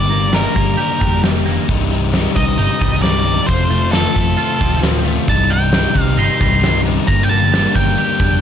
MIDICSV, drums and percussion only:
0, 0, Header, 1, 2, 480
1, 0, Start_track
1, 0, Tempo, 449438
1, 1799, Time_signature, 4, 2, 24, 8
1, 8982, End_track
2, 0, Start_track
2, 0, Title_t, "Drums"
2, 123, Note_on_c, 9, 42, 53
2, 230, Note_off_c, 9, 42, 0
2, 352, Note_on_c, 9, 38, 94
2, 352, Note_on_c, 9, 42, 68
2, 459, Note_off_c, 9, 38, 0
2, 459, Note_off_c, 9, 42, 0
2, 593, Note_on_c, 9, 42, 49
2, 599, Note_on_c, 9, 36, 79
2, 700, Note_off_c, 9, 42, 0
2, 705, Note_off_c, 9, 36, 0
2, 833, Note_on_c, 9, 42, 80
2, 940, Note_off_c, 9, 42, 0
2, 1083, Note_on_c, 9, 36, 82
2, 1085, Note_on_c, 9, 42, 56
2, 1189, Note_off_c, 9, 36, 0
2, 1192, Note_off_c, 9, 42, 0
2, 1322, Note_on_c, 9, 38, 105
2, 1322, Note_on_c, 9, 42, 76
2, 1428, Note_off_c, 9, 38, 0
2, 1428, Note_off_c, 9, 42, 0
2, 1560, Note_on_c, 9, 42, 57
2, 1667, Note_off_c, 9, 42, 0
2, 1804, Note_on_c, 9, 36, 87
2, 1804, Note_on_c, 9, 42, 69
2, 1910, Note_off_c, 9, 42, 0
2, 1911, Note_off_c, 9, 36, 0
2, 2047, Note_on_c, 9, 42, 57
2, 2154, Note_off_c, 9, 42, 0
2, 2282, Note_on_c, 9, 38, 100
2, 2282, Note_on_c, 9, 42, 74
2, 2389, Note_off_c, 9, 38, 0
2, 2389, Note_off_c, 9, 42, 0
2, 2523, Note_on_c, 9, 42, 56
2, 2524, Note_on_c, 9, 36, 75
2, 2630, Note_off_c, 9, 42, 0
2, 2631, Note_off_c, 9, 36, 0
2, 2765, Note_on_c, 9, 42, 76
2, 2871, Note_off_c, 9, 42, 0
2, 3006, Note_on_c, 9, 36, 82
2, 3007, Note_on_c, 9, 42, 55
2, 3113, Note_off_c, 9, 36, 0
2, 3114, Note_off_c, 9, 42, 0
2, 3127, Note_on_c, 9, 38, 30
2, 3233, Note_off_c, 9, 38, 0
2, 3244, Note_on_c, 9, 38, 102
2, 3244, Note_on_c, 9, 42, 73
2, 3350, Note_off_c, 9, 38, 0
2, 3350, Note_off_c, 9, 42, 0
2, 3487, Note_on_c, 9, 42, 58
2, 3594, Note_off_c, 9, 42, 0
2, 3719, Note_on_c, 9, 42, 68
2, 3724, Note_on_c, 9, 36, 94
2, 3825, Note_off_c, 9, 42, 0
2, 3831, Note_off_c, 9, 36, 0
2, 3961, Note_on_c, 9, 42, 49
2, 4067, Note_off_c, 9, 42, 0
2, 4200, Note_on_c, 9, 38, 90
2, 4200, Note_on_c, 9, 42, 73
2, 4307, Note_off_c, 9, 38, 0
2, 4307, Note_off_c, 9, 42, 0
2, 4445, Note_on_c, 9, 36, 76
2, 4451, Note_on_c, 9, 42, 52
2, 4552, Note_off_c, 9, 36, 0
2, 4557, Note_off_c, 9, 42, 0
2, 4682, Note_on_c, 9, 42, 71
2, 4789, Note_off_c, 9, 42, 0
2, 4921, Note_on_c, 9, 42, 61
2, 4923, Note_on_c, 9, 36, 81
2, 5028, Note_off_c, 9, 42, 0
2, 5030, Note_off_c, 9, 36, 0
2, 5049, Note_on_c, 9, 38, 30
2, 5156, Note_off_c, 9, 38, 0
2, 5164, Note_on_c, 9, 38, 100
2, 5164, Note_on_c, 9, 42, 78
2, 5271, Note_off_c, 9, 38, 0
2, 5271, Note_off_c, 9, 42, 0
2, 5401, Note_on_c, 9, 42, 63
2, 5508, Note_off_c, 9, 42, 0
2, 5636, Note_on_c, 9, 42, 76
2, 5641, Note_on_c, 9, 36, 89
2, 5743, Note_off_c, 9, 42, 0
2, 5748, Note_off_c, 9, 36, 0
2, 5881, Note_on_c, 9, 42, 58
2, 5988, Note_off_c, 9, 42, 0
2, 6117, Note_on_c, 9, 38, 102
2, 6117, Note_on_c, 9, 42, 78
2, 6224, Note_off_c, 9, 38, 0
2, 6224, Note_off_c, 9, 42, 0
2, 6356, Note_on_c, 9, 42, 61
2, 6361, Note_on_c, 9, 36, 75
2, 6462, Note_off_c, 9, 42, 0
2, 6468, Note_off_c, 9, 36, 0
2, 6605, Note_on_c, 9, 42, 80
2, 6712, Note_off_c, 9, 42, 0
2, 6845, Note_on_c, 9, 36, 82
2, 6850, Note_on_c, 9, 42, 60
2, 6952, Note_off_c, 9, 36, 0
2, 6957, Note_off_c, 9, 42, 0
2, 7088, Note_on_c, 9, 38, 94
2, 7088, Note_on_c, 9, 42, 76
2, 7195, Note_off_c, 9, 38, 0
2, 7195, Note_off_c, 9, 42, 0
2, 7331, Note_on_c, 9, 42, 56
2, 7438, Note_off_c, 9, 42, 0
2, 7562, Note_on_c, 9, 42, 67
2, 7564, Note_on_c, 9, 36, 95
2, 7669, Note_off_c, 9, 42, 0
2, 7671, Note_off_c, 9, 36, 0
2, 7806, Note_on_c, 9, 42, 55
2, 7913, Note_off_c, 9, 42, 0
2, 8050, Note_on_c, 9, 38, 101
2, 8050, Note_on_c, 9, 42, 74
2, 8156, Note_off_c, 9, 38, 0
2, 8156, Note_off_c, 9, 42, 0
2, 8282, Note_on_c, 9, 36, 72
2, 8285, Note_on_c, 9, 42, 59
2, 8389, Note_off_c, 9, 36, 0
2, 8392, Note_off_c, 9, 42, 0
2, 8519, Note_on_c, 9, 42, 71
2, 8625, Note_off_c, 9, 42, 0
2, 8755, Note_on_c, 9, 42, 60
2, 8757, Note_on_c, 9, 36, 79
2, 8862, Note_off_c, 9, 42, 0
2, 8863, Note_off_c, 9, 36, 0
2, 8982, End_track
0, 0, End_of_file